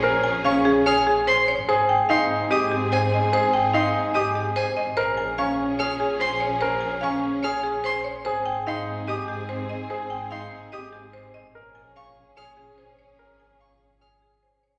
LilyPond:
<<
  \new Staff \with { instrumentName = "Violin" } { \time 4/4 \key bes \dorian \tempo 4 = 146 r4 des'''8 r8 f'''8 r8 c'''8 r8 | r4 c'''8 r8 ees'''8 r8 aes''8 r8 | r4 c'''8 r8 ees'''8 r8 aes''8 r8 | r4 des'''8 r8 f'''8 r8 c'''8 r8 |
r4 des'''8 r8 f'''8 r8 c'''8 r8 | r4 c'''8 r8 ees'''8 r4. | r4 c'''8 r8 ees'''8 r4. | r4 des'''8 r8 f'''8 r4. |
r4 des'''8 r8 f'''8 r4. | }
  \new Staff \with { instrumentName = "Marimba" } { \time 4/4 \key bes \dorian c''8 aes''8 f''8 aes'8 des''8 aes'8 c''8 des''8 | c''8 g''8 f''8 r8 ees''8 g'8 c''8 ees''8 | c''8 g''8 f''8 r8 ees''8 g'8 c''8 ees''8 | c''8 aes''8 f''8 r8 des''8 aes'8 c''8 des''8 |
c''8 aes''8 f''8 r8 des''8 aes'8 c''8 des''8 | c''8 g''8 f''8 r8 ees''8 g'8 c''8 ees''8 | c''8 g''8 f''8 r8 ees''8 g'8 c''8 ees''8 | r8 aes''8 f''8 r8 des''8 aes'8 c''8 des''8 |
r8 aes''8 f''8 r8 des''8 aes'8 c''8 des''8 | }
  \new Staff \with { instrumentName = "Grand piano" } { \time 4/4 \key bes \dorian bes'8 r8 des'8 r8 aes'8 r4. | aes'8 r8 ees'8 r8 g'8 r4. | aes'8 r8 ees'8 r8 g'8 r4. | bes'8 r8 des'8 r8 aes'8 r4. |
bes'8 r8 des'8 r8 aes'8 r4. | aes'8 r8 ees'8 r8 g'8 r4. | aes'8 r8 ees'8 r8 g'8 r4. | bes'8 r4. aes'8 r4. |
bes'8 r4. aes'8 r4. | }
  \new Staff \with { instrumentName = "String section" } { \time 4/4 \key bes \dorian <des' aes'>2.~ <des' aes'>8 r8 | <c' aes'>1~ | <c' aes'>2.~ <c' aes'>8 r8 | <des' aes'>1~ |
<des' aes'>2.~ <des' aes'>8 r8 | <c' aes'>1~ | <c' aes'>2.~ <c' aes'>8 r8 | <des' aes'>1~ |
<des' aes'>2.~ <des' aes'>8 r8 | }
  \new Staff \with { instrumentName = "Double bass section" } { \clef bass \time 4/4 \key bes \dorian bes,,1 | aes,1~ | aes,1 | bes,,1~ |
bes,,1 | aes,1~ | aes,1 | bes,,1~ |
bes,,1 | }
>>